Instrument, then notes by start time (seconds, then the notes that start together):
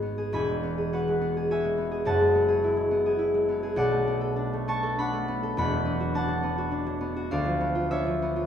harp
Already playing: G#1 G#2 G#3 F#4 G#4 B4 D#5 F#5 G#5
0.02 B3
0.18 G#4
0.32 E1 E2 G#5 B5
0.49 G#3
0.63 B3
0.78 G#4
0.93 F#4 B4 F#5
1.08 G#3
1.21 B3
1.37 G#4
1.51 F#4 E5 G#5
1.64 G#3
1.78 B3
1.91 G#4
2.05 F#1 F#2 F#5 A5
2.20 G#3
2.35 B3
2.48 G#4
2.64 E4
2.77 G#3
2.91 B3
3.06 G#4
3.19 E4
3.34 G#3
3.49 B3
3.63 G#4
3.76 B1 D5 F#5
3.91 A3
4.07 B3
4.21 A4
4.36 D4
4.53 A3
4.68 B3 A5 C#6
4.83 A4
4.98 D4 F#5 B5
5.13 A3
5.28 B3
5.43 A4
5.57 E1 E2 F#5 B5
5.71 F#3
5.85 B3
6.00 F#4
6.14 D4 F#5 A5
6.28 F#3
6.43 B3
6.58 F#4
6.71 D4
6.87 F#3
7.01 B3
7.16 F#4
7.31 D2 D5 F5
7.45 F3
7.60 B3
7.75 F4
7.91 D4 C#5 E5
8.06 F3
8.22 B3
8.36 F4